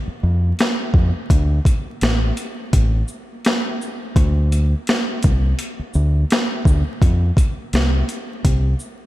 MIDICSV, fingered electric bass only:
0, 0, Header, 1, 3, 480
1, 0, Start_track
1, 0, Key_signature, -1, "minor"
1, 0, Tempo, 714286
1, 874, Time_signature, 4, 2, 24, 8
1, 6089, End_track
2, 0, Start_track
2, 0, Title_t, "Fingered electric bass"
2, 0, Program_c, 0, 33
2, 156, Note_on_c, 0, 41, 87
2, 347, Note_off_c, 0, 41, 0
2, 631, Note_on_c, 0, 41, 89
2, 741, Note_off_c, 0, 41, 0
2, 875, Note_on_c, 0, 38, 108
2, 1067, Note_off_c, 0, 38, 0
2, 1358, Note_on_c, 0, 33, 92
2, 1549, Note_off_c, 0, 33, 0
2, 1836, Note_on_c, 0, 33, 97
2, 2028, Note_off_c, 0, 33, 0
2, 2796, Note_on_c, 0, 38, 115
2, 3180, Note_off_c, 0, 38, 0
2, 3524, Note_on_c, 0, 36, 93
2, 3713, Note_off_c, 0, 36, 0
2, 3999, Note_on_c, 0, 38, 98
2, 4189, Note_off_c, 0, 38, 0
2, 4473, Note_on_c, 0, 38, 98
2, 4582, Note_off_c, 0, 38, 0
2, 4716, Note_on_c, 0, 41, 109
2, 4908, Note_off_c, 0, 41, 0
2, 5196, Note_on_c, 0, 36, 100
2, 5388, Note_off_c, 0, 36, 0
2, 5677, Note_on_c, 0, 36, 105
2, 5868, Note_off_c, 0, 36, 0
2, 6089, End_track
3, 0, Start_track
3, 0, Title_t, "Muted fingered electric bass strokes"
3, 51, Note_on_c, 9, 29, 48
3, 118, Note_off_c, 9, 29, 0
3, 3893, Note_on_c, 9, 29, 50
3, 3960, Note_off_c, 9, 29, 0
3, 6089, End_track
0, 0, End_of_file